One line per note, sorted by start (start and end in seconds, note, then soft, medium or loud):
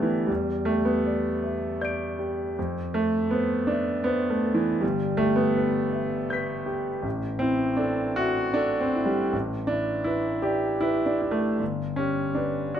0.00 0.25 G1 soft
0.00 0.28 E3 medium
0.00 0.31 A3 medium
0.00 0.31 B3 medium
0.00 0.31 D4 medium
0.00 0.32 G4 soft
0.00 0.32 A4 soft
0.00 0.31 B4 soft
0.27 2.53 E2 soft
0.27 0.66 G3 medium
0.65 0.85 A3 medium
0.65 1.28 G4 soft
0.85 2.18 B3 medium
1.07 1.66 D5 soft
1.44 2.04 E5 soft
1.81 2.42 D5 soft
1.81 2.54 G6 soft
1.81 2.55 D7 soft
2.19 2.57 G4 soft
2.59 4.79 F2 soft
2.94 3.31 A3 medium
2.94 3.55 A4 soft
3.31 3.68 B3 medium
3.31 3.91 C5 soft
3.67 4.05 D4 medium
3.67 4.29 E5 soft
4.04 4.30 B3 medium
4.04 4.67 C5 soft
4.30 4.56 A3 medium
4.45 4.83 A4 soft
4.54 4.81 E3 medium
4.81 7.01 G1 soft
4.81 5.19 G3 medium
5.17 5.37 A3 medium
5.17 5.78 G4 soft
5.36 6.66 B3 medium
5.57 6.16 B4 soft
5.93 6.52 E5 soft
6.30 6.90 B4 soft
6.30 7.01 G6 soft
6.30 7.02 B6 soft
6.66 7.04 G4 soft
7.03 9.29 A1 soft
7.39 7.79 C4 medium
7.39 8.03 E4 soft
7.77 8.17 D4 medium
7.77 8.41 A4 soft
8.16 8.56 F#4 medium
8.16 8.80 E5 soft
8.54 8.81 D4 medium
8.54 9.18 A4 soft
8.80 9.07 C4 medium
8.95 9.33 E4 soft
9.06 9.32 G3 medium
9.33 11.56 A1 soft
9.67 10.07 D4 medium
9.67 10.03 E4 soft
10.04 10.44 E4 medium
10.04 10.68 B4 soft
10.42 10.82 G4 medium
10.42 11.06 D5 soft
10.81 11.08 E4 medium
10.81 11.45 B4 soft
11.06 11.33 D4 medium
11.22 11.60 E4 soft
11.31 11.59 A3 medium
11.59 12.80 G1 soft
11.96 12.36 C#4 medium
11.96 12.61 G4 soft
12.35 12.76 D4 medium
12.35 12.80 B4 soft
12.74 12.80 F#4 medium
12.74 12.80 D5 soft